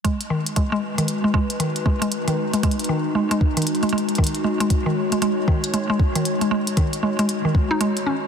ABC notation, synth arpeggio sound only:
X:1
M:4/4
L:1/16
Q:"Swing 16ths" 1/4=116
K:G#m
V:1 name="Synth arpeggio sound" clef=bass
G, z D, z G, G, z D, z G, G, z D, z G, G, | z D, z G, G, z D, z G, G, z D, z G, G, z | D, z G, G, z D, z G, G, z D, z G, G, z D, | z G, G, z D, z G, G, z D, z D G, z C z |]